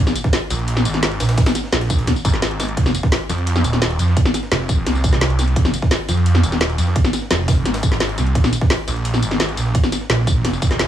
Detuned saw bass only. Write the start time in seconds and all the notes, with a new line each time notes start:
0.00 A#1
0.50 A#1
0.85 G#1
1.20 A#1
1.72 A#1
2.25 G#1
2.77 F1
3.29 F2
3.64 D#1
3.99 F2
4.52 F1
4.86 C2
5.39 C2
5.56 F1
6.09 F2
6.43 D#1
6.78 F2
7.31 F1
7.65 G#1
8.18 C2
8.35 A#1
8.88 A#1
9.22 G#1
9.57 A#1
10.10 A#1
10.45 F1